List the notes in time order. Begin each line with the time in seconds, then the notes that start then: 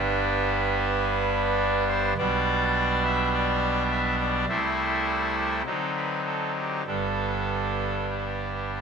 Already playing: G1 G2 G3 B3 D4 B4
1.89 C5
2.18 B1 B2 G3 B3 D4 D5
3.05 E5
3.33 D5
3.91 E5
4.20 D5
4.49 C2 C3 G3 A3 E4 C5
5.66 D3 F#3 C4 D#4 A4
5.95 B4
6.26 A4
6.57 G4
6.87 G1 G2 G3 B3 D4 A4
8.10 G4
8.18 A4
8.25 G4